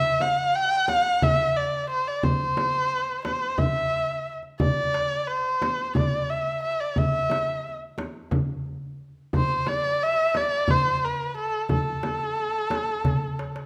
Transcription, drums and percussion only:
0, 0, Header, 1, 3, 480
1, 0, Start_track
1, 0, Tempo, 675676
1, 1592, Time_signature, 7, 3, 24, 8
1, 9703, End_track
2, 0, Start_track
2, 0, Title_t, "Darbuka"
2, 149, Note_on_c, 9, 63, 58
2, 220, Note_off_c, 9, 63, 0
2, 627, Note_on_c, 9, 63, 65
2, 698, Note_off_c, 9, 63, 0
2, 869, Note_on_c, 9, 64, 79
2, 940, Note_off_c, 9, 64, 0
2, 1111, Note_on_c, 9, 62, 26
2, 1182, Note_off_c, 9, 62, 0
2, 1586, Note_on_c, 9, 64, 79
2, 1657, Note_off_c, 9, 64, 0
2, 1828, Note_on_c, 9, 63, 67
2, 1899, Note_off_c, 9, 63, 0
2, 2307, Note_on_c, 9, 63, 69
2, 2378, Note_off_c, 9, 63, 0
2, 2546, Note_on_c, 9, 64, 74
2, 2617, Note_off_c, 9, 64, 0
2, 2787, Note_on_c, 9, 62, 24
2, 2858, Note_off_c, 9, 62, 0
2, 3145, Note_on_c, 9, 62, 22
2, 3216, Note_off_c, 9, 62, 0
2, 3266, Note_on_c, 9, 64, 65
2, 3337, Note_off_c, 9, 64, 0
2, 3512, Note_on_c, 9, 63, 62
2, 3583, Note_off_c, 9, 63, 0
2, 3994, Note_on_c, 9, 63, 74
2, 4065, Note_off_c, 9, 63, 0
2, 4234, Note_on_c, 9, 64, 81
2, 4305, Note_off_c, 9, 64, 0
2, 4477, Note_on_c, 9, 62, 24
2, 4548, Note_off_c, 9, 62, 0
2, 4957, Note_on_c, 9, 64, 83
2, 5028, Note_off_c, 9, 64, 0
2, 5196, Note_on_c, 9, 63, 68
2, 5267, Note_off_c, 9, 63, 0
2, 5672, Note_on_c, 9, 63, 66
2, 5743, Note_off_c, 9, 63, 0
2, 5909, Note_on_c, 9, 64, 87
2, 5980, Note_off_c, 9, 64, 0
2, 6154, Note_on_c, 9, 62, 22
2, 6225, Note_off_c, 9, 62, 0
2, 6633, Note_on_c, 9, 64, 80
2, 6704, Note_off_c, 9, 64, 0
2, 6866, Note_on_c, 9, 63, 62
2, 6937, Note_off_c, 9, 63, 0
2, 7349, Note_on_c, 9, 63, 62
2, 7420, Note_off_c, 9, 63, 0
2, 7589, Note_on_c, 9, 64, 83
2, 7660, Note_off_c, 9, 64, 0
2, 7831, Note_on_c, 9, 62, 27
2, 7902, Note_off_c, 9, 62, 0
2, 8306, Note_on_c, 9, 64, 73
2, 8377, Note_off_c, 9, 64, 0
2, 8547, Note_on_c, 9, 63, 62
2, 8618, Note_off_c, 9, 63, 0
2, 9028, Note_on_c, 9, 63, 71
2, 9099, Note_off_c, 9, 63, 0
2, 9269, Note_on_c, 9, 64, 90
2, 9340, Note_off_c, 9, 64, 0
2, 9514, Note_on_c, 9, 63, 56
2, 9585, Note_off_c, 9, 63, 0
2, 9632, Note_on_c, 9, 62, 60
2, 9703, Note_off_c, 9, 62, 0
2, 9703, End_track
3, 0, Start_track
3, 0, Title_t, "Frame drum"
3, 145, Note_on_c, 9, 64, 62
3, 216, Note_off_c, 9, 64, 0
3, 625, Note_on_c, 9, 64, 70
3, 696, Note_off_c, 9, 64, 0
3, 867, Note_on_c, 9, 64, 95
3, 938, Note_off_c, 9, 64, 0
3, 1587, Note_on_c, 9, 64, 92
3, 1658, Note_off_c, 9, 64, 0
3, 1826, Note_on_c, 9, 64, 68
3, 1897, Note_off_c, 9, 64, 0
3, 2308, Note_on_c, 9, 64, 68
3, 2379, Note_off_c, 9, 64, 0
3, 2543, Note_on_c, 9, 64, 94
3, 2614, Note_off_c, 9, 64, 0
3, 3266, Note_on_c, 9, 64, 94
3, 3337, Note_off_c, 9, 64, 0
3, 3990, Note_on_c, 9, 64, 70
3, 4061, Note_off_c, 9, 64, 0
3, 4227, Note_on_c, 9, 64, 91
3, 4298, Note_off_c, 9, 64, 0
3, 4945, Note_on_c, 9, 64, 87
3, 5016, Note_off_c, 9, 64, 0
3, 5184, Note_on_c, 9, 64, 69
3, 5255, Note_off_c, 9, 64, 0
3, 5667, Note_on_c, 9, 64, 68
3, 5738, Note_off_c, 9, 64, 0
3, 5905, Note_on_c, 9, 64, 85
3, 5976, Note_off_c, 9, 64, 0
3, 6629, Note_on_c, 9, 64, 84
3, 6700, Note_off_c, 9, 64, 0
3, 6869, Note_on_c, 9, 64, 65
3, 6940, Note_off_c, 9, 64, 0
3, 7351, Note_on_c, 9, 64, 66
3, 7423, Note_off_c, 9, 64, 0
3, 7586, Note_on_c, 9, 64, 87
3, 7657, Note_off_c, 9, 64, 0
3, 8308, Note_on_c, 9, 64, 84
3, 8379, Note_off_c, 9, 64, 0
3, 8549, Note_on_c, 9, 64, 67
3, 8620, Note_off_c, 9, 64, 0
3, 9025, Note_on_c, 9, 64, 73
3, 9096, Note_off_c, 9, 64, 0
3, 9266, Note_on_c, 9, 64, 77
3, 9337, Note_off_c, 9, 64, 0
3, 9703, End_track
0, 0, End_of_file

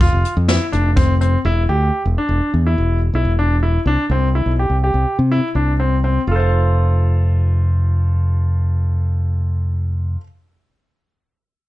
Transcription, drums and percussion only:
0, 0, Header, 1, 2, 480
1, 0, Start_track
1, 0, Key_signature, -1, "major"
1, 0, Tempo, 483481
1, 1437, Time_signature, 5, 2, 24, 8
1, 11602, End_track
2, 0, Start_track
2, 0, Title_t, "Drums"
2, 3, Note_on_c, 9, 42, 67
2, 7, Note_on_c, 9, 36, 87
2, 103, Note_off_c, 9, 42, 0
2, 106, Note_off_c, 9, 36, 0
2, 247, Note_on_c, 9, 42, 51
2, 346, Note_off_c, 9, 42, 0
2, 481, Note_on_c, 9, 38, 92
2, 481, Note_on_c, 9, 42, 68
2, 581, Note_off_c, 9, 38, 0
2, 581, Note_off_c, 9, 42, 0
2, 723, Note_on_c, 9, 42, 47
2, 822, Note_off_c, 9, 42, 0
2, 959, Note_on_c, 9, 42, 65
2, 962, Note_on_c, 9, 36, 88
2, 1058, Note_off_c, 9, 42, 0
2, 1061, Note_off_c, 9, 36, 0
2, 1202, Note_on_c, 9, 42, 48
2, 1302, Note_off_c, 9, 42, 0
2, 11602, End_track
0, 0, End_of_file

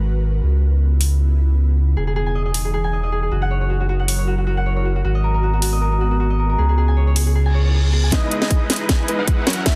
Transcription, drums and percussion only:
0, 0, Header, 1, 2, 480
1, 0, Start_track
1, 0, Tempo, 384615
1, 535, Time_signature, 4, 2, 24, 8
1, 12173, End_track
2, 0, Start_track
2, 0, Title_t, "Drums"
2, 1256, Note_on_c, 9, 46, 85
2, 1381, Note_off_c, 9, 46, 0
2, 3174, Note_on_c, 9, 46, 89
2, 3299, Note_off_c, 9, 46, 0
2, 5094, Note_on_c, 9, 46, 89
2, 5219, Note_off_c, 9, 46, 0
2, 7015, Note_on_c, 9, 46, 95
2, 7140, Note_off_c, 9, 46, 0
2, 8936, Note_on_c, 9, 46, 94
2, 9060, Note_off_c, 9, 46, 0
2, 10135, Note_on_c, 9, 36, 96
2, 10136, Note_on_c, 9, 38, 49
2, 10136, Note_on_c, 9, 42, 81
2, 10260, Note_off_c, 9, 36, 0
2, 10261, Note_off_c, 9, 38, 0
2, 10261, Note_off_c, 9, 42, 0
2, 10376, Note_on_c, 9, 42, 66
2, 10501, Note_off_c, 9, 42, 0
2, 10506, Note_on_c, 9, 38, 46
2, 10615, Note_on_c, 9, 36, 98
2, 10615, Note_on_c, 9, 42, 83
2, 10630, Note_off_c, 9, 38, 0
2, 10740, Note_off_c, 9, 36, 0
2, 10740, Note_off_c, 9, 42, 0
2, 10855, Note_on_c, 9, 38, 50
2, 10855, Note_on_c, 9, 46, 98
2, 10899, Note_on_c, 9, 42, 67
2, 10936, Note_off_c, 9, 42, 0
2, 10936, Note_on_c, 9, 42, 83
2, 10980, Note_off_c, 9, 38, 0
2, 10980, Note_off_c, 9, 46, 0
2, 11061, Note_off_c, 9, 42, 0
2, 11095, Note_on_c, 9, 36, 98
2, 11095, Note_on_c, 9, 38, 54
2, 11095, Note_on_c, 9, 42, 85
2, 11220, Note_off_c, 9, 36, 0
2, 11220, Note_off_c, 9, 38, 0
2, 11220, Note_off_c, 9, 42, 0
2, 11336, Note_on_c, 9, 42, 69
2, 11461, Note_off_c, 9, 42, 0
2, 11575, Note_on_c, 9, 36, 98
2, 11575, Note_on_c, 9, 42, 81
2, 11700, Note_off_c, 9, 36, 0
2, 11700, Note_off_c, 9, 42, 0
2, 11816, Note_on_c, 9, 38, 57
2, 11816, Note_on_c, 9, 42, 51
2, 11858, Note_off_c, 9, 42, 0
2, 11858, Note_on_c, 9, 42, 66
2, 11895, Note_off_c, 9, 42, 0
2, 11895, Note_on_c, 9, 42, 80
2, 11940, Note_off_c, 9, 38, 0
2, 12020, Note_off_c, 9, 42, 0
2, 12054, Note_on_c, 9, 38, 60
2, 12054, Note_on_c, 9, 42, 84
2, 12055, Note_on_c, 9, 36, 102
2, 12173, Note_off_c, 9, 36, 0
2, 12173, Note_off_c, 9, 38, 0
2, 12173, Note_off_c, 9, 42, 0
2, 12173, End_track
0, 0, End_of_file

